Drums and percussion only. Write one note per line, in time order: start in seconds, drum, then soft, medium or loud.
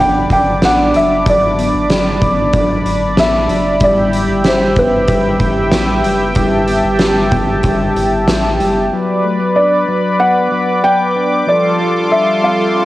0.30 kick medium
0.30 closed hi-hat soft
0.62 snare loud
0.62 closed hi-hat medium
0.94 closed hi-hat soft
1.26 kick medium
1.26 closed hi-hat medium
1.59 closed hi-hat medium
1.90 snare medium
1.90 closed hi-hat medium
2.22 kick medium
2.22 closed hi-hat soft
2.53 kick medium
2.53 closed hi-hat medium
2.86 closed hi-hat soft
3.17 snare loud
3.17 closed hi-hat medium
3.49 closed hi-hat soft
3.80 kick loud
3.80 closed hi-hat medium
4.13 closed hi-hat medium
4.44 snare medium
4.44 closed hi-hat medium
4.76 kick medium
4.76 closed hi-hat soft
5.08 kick medium
5.08 closed hi-hat medium
5.40 kick medium
5.40 closed hi-hat soft
5.72 snare loud
5.72 closed hi-hat medium
6.04 closed hi-hat soft
6.35 kick medium
6.35 closed hi-hat medium
6.68 closed hi-hat soft
6.99 snare loud
6.99 closed hi-hat medium
7.31 kick medium
7.31 closed hi-hat soft
7.63 kick medium
7.63 closed hi-hat medium
7.96 closed hi-hat soft
8.28 snare loud
8.28 closed hi-hat medium
8.60 closed hi-hat soft